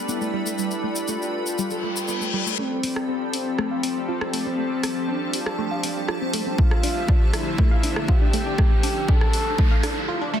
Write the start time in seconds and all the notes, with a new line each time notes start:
Already playing: G3 D4 A4 B4 D5 G5 B5
0.08 B3 E4, shaker
0.21 A3, shaker
0.33 G3
0.46 A3, shaker
0.58 G3, shaker
0.71 shaker
0.84 A3
0.96 shaker
1.08 A3 F4, shaker
1.22 shaker
1.46 shaker
1.58 G3, reverse cymbal, shaker
1.70 A4, shaker
1.83 A3
1.96 shaker
2.08 B3, shaker
2.21 A3, shaker
2.33 G3
2.46 A3, shaker
2.58 F3 A3 C4 G4 A4, riser
2.83 C4 C5, open hi-hat
2.96 cross-stick
3.08 C4
3.30 C4 A5, open hi-hat
3.58 A3, cross-stick
3.71 F5
3.83 C4, open hi-hat
4.08 C4 F4
4.21 C4, cross-stick
4.33 A3, open hi-hat
4.46 C4
4.58 A3
4.83 C4, cross-stick, open hi-hat
5.08 C4 D4
5.33 open hi-hat
5.46 cross-stick
5.58 A3
5.71 F5
5.83 C4, open hi-hat
6.08 F4, cross-stick
6.21 C4
6.33 A3, open hi-hat
6.46 C4
6.58 D3 F3 A3 D4 F4 E5, kick
6.71 cross-stick
6.83 D4, open hi-hat
7.08 D4, kick
7.33 E4, cross-stick, open hi-hat
7.58 A3, kick
7.71 F5
7.83 D4, open hi-hat
7.96 cross-stick
8.08 F4 G4, kick
8.21 D4
8.33 A3, open hi-hat
8.46 D4
8.58 A3, kick, cross-stick, noise sweep
8.83 D4, open hi-hat
9.08 D4 A4, kick
9.21 cross-stick
9.33 open hi-hat
9.58 A3, kick
9.71 F5
9.83 D4, cross-stick, open hi-hat
10.08 F4
10.21 D4
10.34 A3